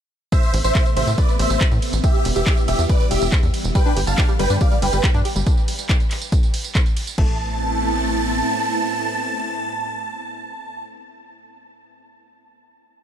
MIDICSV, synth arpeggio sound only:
0, 0, Header, 1, 2, 480
1, 0, Start_track
1, 0, Key_signature, 0, "minor"
1, 0, Tempo, 428571
1, 362, Time_signature, 4, 2, 24, 8
1, 14598, End_track
2, 0, Start_track
2, 0, Title_t, "Synth arpeggio sound"
2, 0, Program_c, 0, 84
2, 4202, Note_on_c, 0, 55, 109
2, 4249, Note_off_c, 0, 55, 0
2, 4322, Note_on_c, 0, 62, 108
2, 4393, Note_off_c, 0, 62, 0
2, 4441, Note_on_c, 0, 67, 80
2, 4470, Note_off_c, 0, 67, 0
2, 4562, Note_on_c, 0, 55, 81
2, 4609, Note_off_c, 0, 55, 0
2, 4681, Note_on_c, 0, 55, 100
2, 4729, Note_off_c, 0, 55, 0
2, 4801, Note_on_c, 0, 55, 108
2, 4849, Note_off_c, 0, 55, 0
2, 4921, Note_on_c, 0, 55, 112
2, 4969, Note_off_c, 0, 55, 0
2, 5042, Note_on_c, 0, 62, 100
2, 5113, Note_off_c, 0, 62, 0
2, 5162, Note_on_c, 0, 67, 83
2, 5190, Note_off_c, 0, 67, 0
2, 5281, Note_on_c, 0, 55, 78
2, 5329, Note_off_c, 0, 55, 0
2, 5402, Note_on_c, 0, 55, 103
2, 5449, Note_off_c, 0, 55, 0
2, 5522, Note_on_c, 0, 55, 102
2, 5569, Note_off_c, 0, 55, 0
2, 5642, Note_on_c, 0, 55, 105
2, 5689, Note_off_c, 0, 55, 0
2, 5762, Note_on_c, 0, 62, 108
2, 5833, Note_off_c, 0, 62, 0
2, 5882, Note_on_c, 0, 67, 83
2, 5910, Note_off_c, 0, 67, 0
2, 6002, Note_on_c, 0, 55, 79
2, 6049, Note_off_c, 0, 55, 0
2, 8041, Note_on_c, 0, 57, 93
2, 8265, Note_off_c, 0, 57, 0
2, 14598, End_track
0, 0, End_of_file